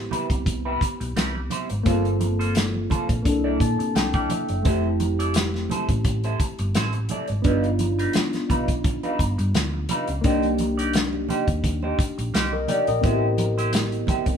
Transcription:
Already playing: B3 C4 E4 G4
0.11 G3 C4 E4 B4, muted fingered electric bass stroke, closed hi-hat, high conga, low conga
0.30 C2, muted clean electric guitar stroke, kick, closed hi-hat
0.45 muted clean electric guitar stroke, kick, closed hi-hat, high conga
0.65 G3 C4 E4 B4
0.81 muted clean electric guitar stroke, muted fingered electric bass stroke, kick, closed hi-hat
1.00 B1, muted clean electric guitar stroke, closed hi-hat
1.16 C2 G3 C4 E4 B4, snare, closed hi-hat, muted conga, high conga
1.35 muted clean electric guitar stroke, muted conga
1.50 G3 C4 E4 C5, closed hi-hat, high conga, low conga
1.70 G#1, muted clean electric guitar stroke, closed hi-hat
1.83 G1 A#3 C4 F4 A4 C5, kick, closed hi-hat
1.88 F4 A4
2.05 closed hi-hat
2.20 muted clean electric guitar stroke, closed hi-hat, high conga
2.39 A#3 F4 A4 C5, closed hi-hat
2.55 muted clean electric guitar stroke, snare, closed hi-hat, muted conga, high conga
2.74 muted conga
2.90 A#3 F4 A4 C5, muted fingered electric bass stroke, kick, closed hi-hat, high conga, low conga
3.09 A#1, muted clean electric guitar stroke, kick, closed hi-hat
3.22 C2 A#3 D4, muted clean electric guitar stroke, kick, closed hi-hat, high conga
3.27 E4 A4
3.44 A#3 E4 A4 D5
3.60 A#2 A5, muted clean electric guitar stroke, kick, closed hi-hat
3.79 C3, muted clean electric guitar stroke, closed hi-hat
3.95 C2 G5, muted clean electric guitar stroke, snare, closed hi-hat, muted conga, high conga
4.13 A#3 E4 A4 D5 G5, kick, closed hi-hat
4.30 E5, muted clean electric guitar stroke, closed hi-hat, high conga, low conga
4.49 F#1, muted clean electric guitar stroke, closed hi-hat
4.62 F1 A3 C4 E4 A4 C5, kick, closed hi-hat
4.67 E4 G4
4.84 muted conga
5.00 muted clean electric guitar stroke, closed hi-hat, high conga
5.19 C4 E4 A4 D5, closed hi-hat
5.34 muted clean electric guitar stroke, snare, closed hi-hat, muted conga, high conga
5.54 snare, muted conga
5.70 C4 E4 A4 C5, muted fingered electric bass stroke, closed hi-hat, high conga, low conga
5.89 A1, muted clean electric guitar stroke, kick, closed hi-hat
6.05 muted clean electric guitar stroke, kick, closed hi-hat, muted conga, high conga
6.24 C4 E4 A4 C5, closed hi-hat
6.40 muted clean electric guitar stroke, kick, closed hi-hat
6.59 G1, muted clean electric guitar stroke, closed hi-hat
6.75 A1 C4 E4 A4 C5, snare, closed hi-hat, muted conga, high conga
6.93 muted clean electric guitar stroke, closed hi-hat
7.09 C4 E4 A4 D5, closed hi-hat, high conga, low conga
7.28 G#1, muted clean electric guitar stroke, closed hi-hat
7.42 G1 G3 B3 D4 D#4 F4 B4, kick, closed hi-hat, muted conga
7.48 F4
7.64 closed hi-hat
7.79 muted clean electric guitar stroke, closed hi-hat, high conga
7.99 G3 D#4 F4 B4, closed hi-hat
8.13 muted clean electric guitar stroke, snare, closed hi-hat, muted conga, high conga
8.33 snare, closed hi-hat, muted conga
8.49 B1 G3 D#4 F4 B4, kick, closed hi-hat, high conga, low conga
8.68 muted clean electric guitar stroke, kick, closed hi-hat
8.84 muted clean electric guitar stroke, kick, closed hi-hat, muted conga, high conga
9.03 G3 D#4 F4 B4, closed hi-hat, muted conga
9.19 G1, muted clean electric guitar stroke, kick, closed hi-hat
9.38 G2, muted clean electric guitar stroke, closed hi-hat
9.55 D2, muted clean electric guitar stroke, snare, closed hi-hat, muted conga, high conga
9.73 muted clean electric guitar stroke, muted conga
9.89 G3 D#4 F4 B4, closed hi-hat, high conga, low conga
10.07 C#2, muted clean electric guitar stroke, closed hi-hat
10.21 C2 A#3 D4, kick, closed hi-hat
10.25 D#4 G4 C5
10.43 closed hi-hat, muted conga
10.58 muted clean electric guitar stroke, closed hi-hat, high conga
10.78 A#3 D#4 G4 D5, closed hi-hat
10.93 muted clean electric guitar stroke, snare, closed hi-hat, high conga
11.13 muted conga
11.29 A#3 D#4 G4 C5, muted fingered electric bass stroke, closed hi-hat, high conga, low conga
11.48 D#2, muted clean electric guitar stroke, kick, closed hi-hat
11.63 muted clean electric guitar stroke, kick, closed hi-hat, muted conga, high conga
11.82 A#3 D#4 G4 C5, muted conga
11.99 muted clean electric guitar stroke, muted fingered electric bass stroke, kick, closed hi-hat
12.18 A#1, muted clean electric guitar stroke, closed hi-hat
12.34 C2 A#3 D#4 G4 C5, snare, closed hi-hat, high conga
12.52 A#4 D#5, muted clean electric guitar stroke, muted conga
12.68 A#3 D#4 G4 D5 G5, closed hi-hat, high conga, low conga
12.87 A#1 A#4 D#5, muted clean electric guitar stroke, closed hi-hat
13.01 A1 B3 C4 E4 G4 C5, kick, closed hi-hat, muted conga, low conga
13.05 E4 F#4
13.14 G4
13.38 muted clean electric guitar stroke, closed hi-hat, high conga
13.58 C4 E4 G4 C5, closed hi-hat
13.73 muted clean electric guitar stroke, snare, closed hi-hat, high conga
13.92 closed hi-hat
14.07 C4 E4 G4 C5, muted fingered electric bass stroke, kick, closed hi-hat, high conga, low conga
14.26 C2, muted clean electric guitar stroke, kick, closed hi-hat

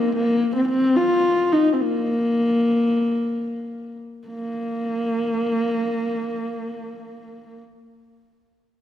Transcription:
Already playing: A#3
0.16 A#3
0.55 C4
0.69 C4
0.96 F4
1.53 D#4
1.73 C4
1.80 A#3
4.28 A#3

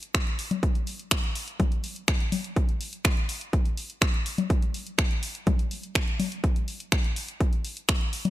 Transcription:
0.03 closed hi-hat
0.15 finger snap, kick, closed hi-hat
0.27 closed hi-hat
0.39 open hi-hat
0.51 closed hi-hat, low conga
0.63 kick, closed hi-hat
0.75 closed hi-hat
0.87 open hi-hat
0.99 closed hi-hat
1.11 finger snap, kick, closed hi-hat
1.24 closed hi-hat
1.35 open hi-hat
1.48 closed hi-hat
1.60 kick, closed hi-hat, low conga
1.72 closed hi-hat
1.84 open hi-hat
1.96 closed hi-hat
2.08 finger snap, kick, closed hi-hat
2.20 closed hi-hat
2.32 open hi-hat, low conga
2.44 closed hi-hat
2.56 kick, closed hi-hat
2.69 closed hi-hat
2.81 open hi-hat
2.93 closed hi-hat
3.05 finger snap, kick, closed hi-hat
3.17 closed hi-hat
3.29 open hi-hat
3.41 closed hi-hat
3.53 kick, closed hi-hat
3.65 closed hi-hat
3.77 open hi-hat
3.90 closed hi-hat
4.02 finger snap, kick, closed hi-hat
4.14 closed hi-hat
4.26 open hi-hat
4.38 closed hi-hat, low conga
4.50 kick, closed hi-hat
4.62 closed hi-hat
4.74 open hi-hat
4.87 closed hi-hat
4.98 finger snap, kick, closed hi-hat
5.11 closed hi-hat
5.23 open hi-hat
5.35 closed hi-hat
5.47 kick, closed hi-hat, low conga
5.59 closed hi-hat
5.71 open hi-hat
5.83 closed hi-hat
5.95 finger snap, kick, closed hi-hat
6.08 closed hi-hat
6.20 open hi-hat, low conga
6.32 closed hi-hat
6.44 kick, closed hi-hat
6.56 closed hi-hat
6.68 open hi-hat
6.80 closed hi-hat
6.92 finger snap, kick, closed hi-hat
7.04 closed hi-hat
7.16 open hi-hat
7.29 closed hi-hat
7.41 kick, closed hi-hat
7.53 closed hi-hat
7.65 open hi-hat
7.77 closed hi-hat
7.89 finger snap, kick, closed hi-hat
8.01 closed hi-hat
8.13 open hi-hat
8.25 closed hi-hat, low conga

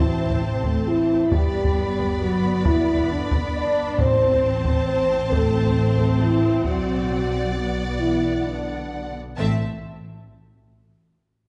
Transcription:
Already playing: A1 C4 E4 C5 A5
0.00 E3
0.30 taiko
0.43 C3 C4
0.64 A3 A4, taiko
0.87 E3 E4
1.32 G1 G3 B3 G4 D5 B5, taiko
1.65 taiko
1.99 taiko
2.20 F#3 F#4
2.65 E3 E4, taiko
2.97 taiko
3.11 D3 D4
3.31 taiko
3.55 D4 D5
3.98 A1 A2 C4 C5 A5, taiko
4.32 taiko
4.65 taiko
4.87 C4 C5
5.31 A3 A4, taiko
5.66 taiko
5.98 A3 A4, taiko
6.20 E3 E4
6.64 B1 F#3 F#4 D5 F#5, taiko
7.54 F#3 B3 F#4
8.00 E3 E4
8.46 D3 D4
9.37 A1 A2 A3 C4 E5 A5

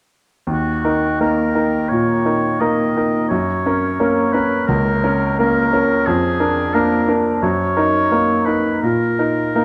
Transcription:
0.47 D#2 F#4
0.85 D#4 A#4
1.20 A#3 D#4 A#4
1.55 D#4 A#4
1.89 A#2 C#5
2.25 D#4 A#4
2.60 A#3 D#4 A#4 D#5
2.97 D#4 A#4
3.28 F#2 C#5
3.66 C#4 A#4
4.00 A#3 C#4 A#4
4.33 C#4 A#4 B4
4.67 C#2 A#4
5.04 C#4 A#4
5.39 A#3 C#4 A#4
5.73 C#4 A#4
6.06 F2 G#4
6.40 D4 A#4
6.74 A#3 D4 A#4
7.08 D4 A#4
7.42 F#2 C#5
7.77 D#4 A#4
8.11 A#3 D#4 A#4
8.45 D#4 A#4 B4
8.82 A#2 A#4
9.19 D#4 A#4
9.55 A#3 D#4 A#4

